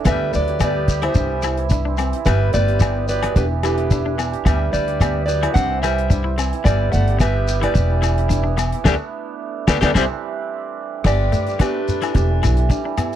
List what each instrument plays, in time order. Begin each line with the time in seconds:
Already playing: hammered dulcimer D3 E3 B3 D4 E4 G4
0.05 upright bass D2, hammered dulcimer G3, clean electric guitar B3, steel-string acoustic guitar B4 E5, kick, cross-stick, closed hi-hat, low agogo, shekere
0.11 alto saxophone G3
0.33 upright bass D2, clean electric guitar A3, steel-string acoustic guitar B4 D5, closed hi-hat, shekere
0.38 alto saxophone F#3
0.48 hammered dulcimer G4, closed hi-hat
0.60 clean electric guitar B3, hammered dulcimer G4, steel-string acoustic guitar B4, kick, cross-stick, closed hi-hat, low agogo, shekere
0.64 alto saxophone G3, steel-string acoustic guitar D5
0.76 hammered dulcimer B3
0.88 hammered dulcimer G4, kick, closed hi-hat, shekere
1.02 hammered dulcimer B3, clean electric guitar E4, steel-string acoustic guitar C5 E5, cross-stick, closed hi-hat, low agogo
1.07 alto saxophone G3
1.14 upright bass C2, hammered dulcimer E3, clean electric guitar D4, kick, closed hi-hat, shekere
1.32 hammered dulcimer E3
1.42 hammered dulcimer E3, clean electric guitar E4, cross-stick, closed hi-hat, low agogo, shekere
1.57 hammered dulcimer E4, closed hi-hat
1.70 clean electric guitar D4, hammered dulcimer E4, kick, closed hi-hat, shekere
1.85 hammered dulcimer C4, clean electric guitar D4
1.97 hammered dulcimer E3, clean electric guitar C4, cross-stick, closed hi-hat, low agogo, shekere
2.13 hammered dulcimer E4, closed hi-hat
2.25 upright bass G1, hammered dulcimer G3, alto saxophone G3, clean electric guitar B3, steel-string acoustic guitar B4 E5, kick, cross-stick, closed hi-hat, low agogo, shekere
2.53 upright bass G1, alto saxophone G3, clean electric guitar A3, steel-string acoustic guitar B4 D5, closed hi-hat, shekere
2.68 hammered dulcimer G4, closed hi-hat
2.80 clean electric guitar B3, hammered dulcimer G4, kick, cross-stick, closed hi-hat, low agogo, shekere
2.97 hammered dulcimer B3
3.08 alto saxophone F#3, hammered dulcimer G4, steel-string acoustic guitar B4 D5, closed hi-hat, shekere
3.23 hammered dulcimer B3, muted clean electric guitar stroke, cross-stick, closed hi-hat, low agogo
3.36 upright bass E1, alto saxophone D3, hammered dulcimer E3, clean electric guitar D4, steel-string acoustic guitar G4 B4, kick, closed hi-hat, shekere
3.51 hammered dulcimer E3
3.63 alto saxophone D3, hammered dulcimer E3, clean electric guitar E4, steel-string acoustic guitar G4 B4, cross-stick, closed hi-hat, low agogo, shekere
3.77 hammered dulcimer E4, closed hi-hat
3.90 clean electric guitar D4, hammered dulcimer E4, kick, closed hi-hat, shekere
4.05 hammered dulcimer D4, clean electric guitar D4
4.18 hammered dulcimer E3, clean electric guitar B3, cross-stick, closed hi-hat, low agogo, shekere
4.32 hammered dulcimer G4, closed hi-hat
4.45 upright bass D2, hammered dulcimer G3, alto saxophone G3, clean electric guitar B3, steel-string acoustic guitar B4 E5, kick, cross-stick, closed hi-hat, low agogo, shekere
4.73 upright bass D2, alto saxophone G3, steel-string acoustic guitar B4 D5, muted clean electric guitar stroke, closed hi-hat, shekere
4.87 hammered dulcimer G4, closed hi-hat
5.00 clean electric guitar B3, hammered dulcimer G4, kick, cross-stick, closed hi-hat, low agogo, shekere
5.14 hammered dulcimer B3
5.26 alto saxophone F#3, hammered dulcimer G4, steel-string acoustic guitar B4 D5, closed hi-hat, shekere
5.41 hammered dulcimer B3, clean electric guitar E4, cross-stick, closed hi-hat, low agogo
5.54 upright bass C2, hammered dulcimer E3, alto saxophone C4, clean electric guitar D4, steel-string acoustic guitar C5 F#5, kick, closed hi-hat, shekere
5.69 hammered dulcimer E3
5.82 hammered dulcimer E3, alto saxophone G3, clean electric guitar E4, steel-string acoustic guitar C5 E5, cross-stick, closed hi-hat, low agogo, shekere
5.98 closed hi-hat
6.10 clean electric guitar D4, hammered dulcimer E4, kick, closed hi-hat, shekere
6.24 hammered dulcimer C4, clean electric guitar E4
6.38 hammered dulcimer E3, clean electric guitar C4, cross-stick, closed hi-hat, low agogo, shekere
6.53 hammered dulcimer E4, closed hi-hat
6.64 upright bass G1, alto saxophone G3, hammered dulcimer G3, clean electric guitar B3, steel-string acoustic guitar B4 D5, kick, cross-stick, closed hi-hat, low agogo, shekere
6.92 upright bass G1, clean electric guitar A3, alto saxophone A3, steel-string acoustic guitar D5 F#5, closed hi-hat, shekere
7.08 hammered dulcimer G4, closed hi-hat
7.18 alto saxophone G3, clean electric guitar B3, hammered dulcimer G4, steel-string acoustic guitar B4 E5, kick, cross-stick, closed hi-hat, low agogo, shekere
7.35 hammered dulcimer B3
7.48 hammered dulcimer G4, closed hi-hat, shekere
7.61 alto saxophone G3, hammered dulcimer B3, clean electric guitar E4, steel-string acoustic guitar B4 D5, cross-stick, closed hi-hat, low agogo
7.74 upright bass E1, hammered dulcimer E3, muted clean electric guitar stroke, kick, closed hi-hat, shekere
7.91 hammered dulcimer E3
8.02 hammered dulcimer E3, clean electric guitar E4, cross-stick, closed hi-hat, low agogo, shekere
8.18 hammered dulcimer E4, closed hi-hat
8.29 clean electric guitar D4, hammered dulcimer E4, kick, closed hi-hat, shekere
8.44 hammered dulcimer B3, clean electric guitar D4
8.57 hammered dulcimer E3, clean electric guitar B3, cross-stick, closed hi-hat, low agogo, shekere
8.72 hammered dulcimer E4, closed hi-hat
8.84 upright bass D2, alto saxophone G3, hammered dulcimer A3 B3 D4, clean electric guitar B3 D4 G4, steel-string acoustic guitar A4 B4 D5, kick, snare, low agogo, shekere
9.67 upright bass D2, alto saxophone G3, hammered dulcimer A3 B3 D4, clean electric guitar B3 D4 G4, steel-string acoustic guitar A4 B4 D5, kick, snare, low agogo, shekere
9.81 upright bass D2, hammered dulcimer A3 B3 D4, clean electric guitar B3 D4 G4, steel-string acoustic guitar A4 B4 D5, kick, snare, low agogo, shekere
9.85 alto saxophone G3
9.94 upright bass C2, hammered dulcimer E3 G3 C4, clean electric guitar G3 C4 E4, alto saxophone G3, steel-string acoustic guitar G4 C5 E5, kick, snare, low agogo, shekere
11.04 upright bass G1, hammered dulcimer G3, clean electric guitar B3, alto saxophone G4, steel-string acoustic guitar B4 D5, kick, cross-stick, crash, low agogo, shekere
11.21 hammered dulcimer G3
11.32 hammered dulcimer G3, clean electric guitar A3, closed hi-hat, shekere
11.47 hammered dulcimer G3, closed hi-hat, shekere
11.59 hammered dulcimer A3, clean electric guitar B3, alto saxophone D4, steel-string acoustic guitar G4 B4, kick, cross-stick, closed hi-hat, low agogo, shekere
11.76 hammered dulcimer G3
11.88 closed hi-hat, shekere
12.02 hammered dulcimer G3, clean electric guitar E4, cross-stick, closed hi-hat, low agogo, shekere
12.15 upright bass E1, hammered dulcimer E3, muted clean electric guitar stroke, kick, closed hi-hat, shekere
12.30 hammered dulcimer E3
12.43 upright bass B1, hammered dulcimer E3, clean electric guitar E4, cross-stick, closed hi-hat, low agogo, shekere
12.57 hammered dulcimer E3, closed hi-hat
12.70 hammered dulcimer G3, clean electric guitar D4, kick, closed hi-hat, shekere
12.85 hammered dulcimer E3, clean electric guitar D4
12.98 clean electric guitar B3, hammered dulcimer E4, cross-stick, closed hi-hat, low agogo, shekere